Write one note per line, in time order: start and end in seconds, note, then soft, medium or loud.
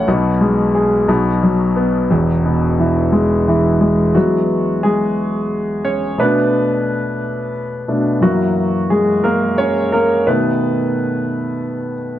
0.08 1.05 B1 medium
0.08 1.06 B2 medium
0.41 1.07 G#3 medium
0.75 1.08 G#4 medium
1.08 2.06 B1 medium
1.08 2.08 B2 medium
1.43 2.09 F#3 medium
1.76 2.09 B3 medium
2.11 4.10 E1 medium
2.11 4.10 E2 medium
2.46 3.77 B2 soft
2.80 3.47 E3 medium
3.12 3.79 G#3 medium
3.48 4.13 E3 medium
3.81 4.14 G#3 medium
4.15 4.60 E3 soft
4.15 4.79 F#3 soft
4.15 4.60 G#3 soft
4.15 4.60 B3 soft
4.15 4.85 F#4 medium
4.83 5.81 G#3 medium
4.83 5.81 G#4 medium
5.85 6.16 C#4 medium
5.85 6.16 C#5 medium
6.18 7.86 B2 soft
6.18 7.87 A3 soft
6.18 7.51 B3 medium
6.18 7.87 D4 soft
6.18 7.51 B4 medium
7.88 8.19 B2 soft
7.88 8.19 A3 soft
7.88 8.19 D4 soft
8.21 10.22 F#2 soft
8.21 10.22 E3 soft
8.21 8.87 F#3 medium
8.21 9.23 A#3 soft
8.21 8.92 F#4 medium
8.90 9.22 G#3 medium
8.90 9.25 G#4 medium
9.24 9.56 A#3 medium
9.24 9.56 A#4 medium
9.58 9.91 C#4 medium
9.58 9.93 C#5 medium
9.92 10.25 A#3 medium
9.92 10.24 A#4 medium
10.27 12.19 B2 soft
10.27 12.19 D#3 soft
10.27 12.19 A3 soft
10.27 11.93 B3 medium
10.27 11.93 B4 medium